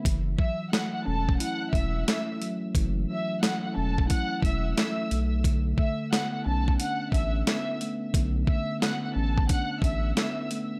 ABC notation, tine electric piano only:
X:1
M:4/4
L:1/8
Q:"Swing 16ths" 1/4=89
K:F#phr
V:1 name="Tine electric piano"
E, F, A, C E2 A, F, | E, F, A, C E2 A, A, | D, A, B, C D2 B, A, | D, A, B, C D2 B, A, |]